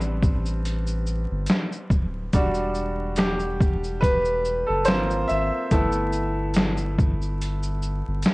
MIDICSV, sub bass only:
0, 0, Header, 1, 2, 480
1, 0, Start_track
1, 0, Key_signature, 1, "minor"
1, 0, Tempo, 845070
1, 1325, Time_signature, 4, 2, 24, 8
1, 4737, End_track
2, 0, Start_track
2, 0, Title_t, "Sub bass"
2, 0, Program_c, 0, 38
2, 0, Note_on_c, 0, 33, 85
2, 719, Note_off_c, 0, 33, 0
2, 746, Note_on_c, 0, 31, 97
2, 839, Note_off_c, 0, 31, 0
2, 1084, Note_on_c, 0, 26, 88
2, 1302, Note_off_c, 0, 26, 0
2, 1329, Note_on_c, 0, 28, 107
2, 2638, Note_off_c, 0, 28, 0
2, 2665, Note_on_c, 0, 30, 103
2, 2771, Note_on_c, 0, 32, 92
2, 2780, Note_off_c, 0, 30, 0
2, 2986, Note_off_c, 0, 32, 0
2, 3012, Note_on_c, 0, 32, 83
2, 3130, Note_off_c, 0, 32, 0
2, 3249, Note_on_c, 0, 31, 99
2, 4558, Note_off_c, 0, 31, 0
2, 4588, Note_on_c, 0, 31, 105
2, 4680, Note_off_c, 0, 31, 0
2, 4737, End_track
0, 0, End_of_file